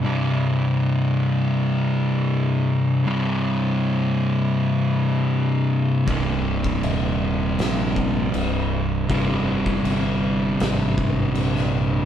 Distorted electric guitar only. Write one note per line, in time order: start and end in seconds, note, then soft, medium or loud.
0.03 3.04 C2 medium
0.03 3.04 G2 loud
0.03 3.06 C3 loud
3.05 6.06 C2 medium
3.05 6.06 G2 loud
3.05 6.09 C3 loud
6.07 9.08 C2 medium
6.07 9.08 G2 loud
6.07 9.10 C3 loud
9.09 12.05 C2 loud
9.09 12.05 G2 loud
9.09 12.05 C3 medium